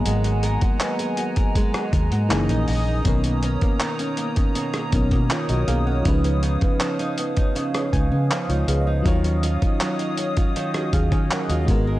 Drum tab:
HH |xxxxxxxxxxxxxxo-|xxxxxxxxxxxxxxx-|xxxxxxxxxxx-xxx-|xxxxxxxxxxxxxxx-|
CP |----x-------x---|----x-------x---|----x-------x---|----x-------x---|
SD |---------r------|---------r------|---------r------|---------r------|
BD |---o---oo-o-----|o--o---o--oo----|o--o---o--o-----|o--o---o--oo--o-|